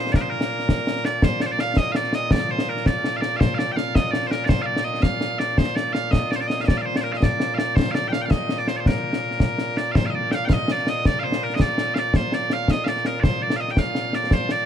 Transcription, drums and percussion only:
0.05 snare
0.14 concert bass drum, snare
0.41 snare
0.59 snare
0.69 concert bass drum, snare
0.78 snare
0.87 snare
0.96 snare
1.05 snare
1.22 concert bass drum, snare
1.40 snare
1.59 snare
1.77 concert bass drum, snare
1.95 snare
2.04 snare
2.13 snare
2.31 concert bass drum, snare
2.59 snare
2.77 snare
2.86 concert bass drum, snare
3.04 snare
3.22 snare
3.41 concert bass drum, snare
3.59 snare
3.77 snare
3.95 concert bass drum, snare
4.13 snare
4.22 snare
4.31 snare
4.49 concert bass drum, snare
4.76 snare
4.94 snare
5.03 concert bass drum, snare
5.21 snare
5.40 snare
5.58 concert bass drum, snare
5.76 snare
5.95 snare
6.13 concert bass drum, snare
6.32 snare
6.41 snare
6.50 snare
6.68 concert bass drum, snare
6.96 snare
7.14 snare
7.22 concert bass drum, snare
7.40 snare
7.59 snare
7.77 concert bass drum, snare
7.95 snare
8.13 snare
8.31 concert bass drum, snare
8.49 snare
8.58 snare
8.68 snare
8.86 concert bass drum, snare
9.13 snare
9.31 snare
9.40 concert bass drum, snare
9.58 snare
9.77 snare
9.95 concert bass drum, snare
10.32 snare
10.50 concert bass drum, snare
10.68 snare
10.78 snare
10.87 snare
11.05 concert bass drum, snare
11.32 snare
11.50 snare
11.60 concert bass drum, snare
11.78 snare
11.96 snare
12.14 concert bass drum, snare
12.32 snare
12.50 snare
12.68 concert bass drum, snare
12.86 snare
12.96 snare
13.05 snare
13.24 concert bass drum, snare
13.50 snare
13.68 snare
13.77 concert bass drum, snare
13.95 snare
14.13 snare
14.31 concert bass drum, snare
14.49 snare

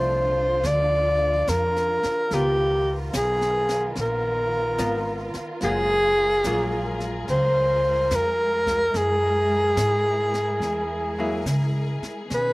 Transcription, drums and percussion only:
0.63 brush sweep, snare
1.48 snare, hi-hat pedal
1.76 snare
2.03 snare
2.31 brush sweep, snare
3.13 snare, hi-hat pedal
3.41 snare
3.69 snare
3.95 brush sweep, snare
4.78 snare, hi-hat pedal
5.34 snare
5.61 brush sweep, snare
6.44 snare, hi-hat pedal
7.00 snare
7.28 brush sweep, snare
8.11 snare, hi-hat pedal
8.67 kick, snare
8.94 brush sweep, snare
9.77 snare, hi-hat pedal
10.34 snare
10.62 brush sweep, snare
11.46 snare, hi-hat pedal
12.03 snare
12.30 brush sweep, snare

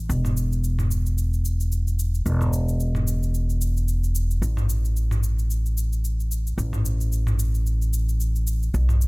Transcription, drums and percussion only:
0.10 shaker
0.25 mid tom, shaker
0.37 shaker
0.52 shaker
0.64 shaker
0.79 mid tom, shaker
0.91 shaker
1.06 shaker
1.18 shaker
1.33 shaker
1.45 shaker
1.60 shaker
1.72 shaker
1.88 shaker
1.99 shaker
2.14 shaker
2.26 shaker
2.41 mid tom, shaker
2.53 shaker
2.69 shaker
2.80 shaker
2.95 mid tom, shaker
3.07 shaker
3.23 shaker
3.34 shaker
3.50 shaker
3.61 shaker
3.77 shaker
3.88 shaker
4.04 shaker
4.15 shaker
4.31 shaker
4.43 shaker
4.57 mid tom, shaker
4.69 shaker
4.85 shaker
4.97 shaker
5.11 mid tom, shaker
5.23 shaker
5.39 shaker
5.51 shaker
5.66 shaker
5.78 shaker
5.93 shaker
6.05 shaker
6.20 shaker
6.32 shaker
6.47 shaker
6.59 shaker
6.73 mid tom, shaker
6.85 shaker
7.01 shaker
7.12 shaker
7.27 mid tom, shaker
7.39 shaker
7.55 shaker
7.66 shaker
7.82 shaker
7.93 shaker
8.09 shaker
8.20 shaker
8.36 shaker
8.47 shaker
8.63 shaker
8.74 shaker
8.89 mid tom, shaker
9.01 shaker

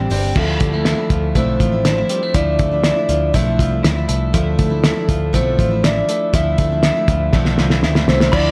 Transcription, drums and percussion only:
0.11 open hi-hat
0.36 kick, crash
0.60 kick, closed hi-hat
0.85 snare, closed hi-hat
1.10 kick, closed hi-hat
1.35 kick, closed hi-hat
1.60 kick, closed hi-hat
1.85 snare, closed hi-hat
2.09 closed hi-hat
2.34 kick, closed hi-hat
2.59 kick, closed hi-hat
2.84 snare, closed hi-hat
3.09 closed hi-hat
3.34 kick, closed hi-hat
3.59 kick, closed hi-hat
3.84 snare, closed hi-hat
4.09 closed hi-hat
4.34 kick, closed hi-hat
4.59 kick, closed hi-hat
4.84 snare, closed hi-hat
5.09 kick, closed hi-hat
5.34 kick, closed hi-hat
5.59 kick, closed hi-hat
5.84 snare, closed hi-hat
6.09 closed hi-hat
6.34 kick, closed hi-hat
6.58 kick, closed hi-hat
6.83 snare, closed hi-hat
7.08 kick, closed hi-hat
7.33 kick, snare
7.45 snare
7.58 snare
7.70 snare
7.83 snare
7.95 snare
8.08 snare
8.20 snare
8.33 kick, crash

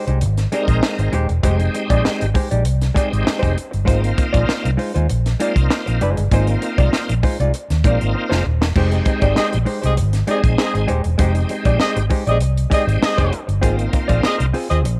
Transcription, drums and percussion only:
0.08 closed hi-hat
0.21 closed hi-hat
0.37 snare, closed hi-hat
0.52 closed hi-hat
0.68 kick, closed hi-hat
0.83 snare
0.99 closed hi-hat
1.13 closed hi-hat
1.29 closed hi-hat
1.43 kick, closed hi-hat
1.60 closed hi-hat
1.74 closed hi-hat
1.90 kick, closed hi-hat
2.05 snare
2.21 closed hi-hat
2.35 kick, open hi-hat
2.51 closed hi-hat
2.65 closed hi-hat
2.82 snare, closed hi-hat
2.96 kick, closed hi-hat
3.13 closed hi-hat
3.27 snare
3.43 kick, closed hi-hat
3.58 closed hi-hat
3.73 closed hi-hat
3.88 kick, closed hi-hat
4.04 closed hi-hat
4.18 kick, closed hi-hat
4.34 kick, closed hi-hat
4.49 snare
4.65 closed hi-hat
4.79 open hi-hat
4.96 closed hi-hat
5.09 closed hi-hat
5.26 snare, closed hi-hat
5.40 closed hi-hat
5.56 kick, closed hi-hat
5.70 snare
5.87 closed hi-hat
6.01 closed hi-hat
6.17 closed hi-hat
6.32 kick, closed hi-hat
6.47 closed hi-hat
6.62 closed hi-hat
6.78 kick, closed hi-hat
6.93 snare
7.09 closed hi-hat
7.23 kick, open hi-hat
7.40 closed hi-hat
7.54 closed hi-hat
7.70 snare, closed hi-hat
7.84 kick, closed hi-hat
8.01 closed hi-hat
8.32 snare
8.62 snare
8.76 kick, crash
8.92 closed hi-hat
9.06 kick, closed hi-hat
9.22 kick, closed hi-hat
9.36 snare
9.53 closed hi-hat
9.66 open hi-hat
9.83 closed hi-hat
9.97 closed hi-hat
10.13 snare, closed hi-hat
10.28 closed hi-hat
10.44 kick, closed hi-hat
10.58 snare
10.75 closed hi-hat
10.88 closed hi-hat
11.04 closed hi-hat
11.19 kick, closed hi-hat
11.35 closed hi-hat
11.49 closed hi-hat
11.65 kick, closed hi-hat
11.80 snare
11.97 closed hi-hat
12.10 kick, open hi-hat
12.27 closed hi-hat
12.41 closed hi-hat
12.57 closed hi-hat
12.71 kick, closed hi-hat
12.89 closed hi-hat
13.03 snare
13.18 kick, closed hi-hat
13.33 closed hi-hat
13.49 closed hi-hat
13.63 kick, closed hi-hat
13.79 closed hi-hat
13.93 kick, closed hi-hat
14.09 kick, closed hi-hat
14.23 snare
14.40 closed hi-hat
14.54 open hi-hat
14.71 closed hi-hat
14.85 closed hi-hat

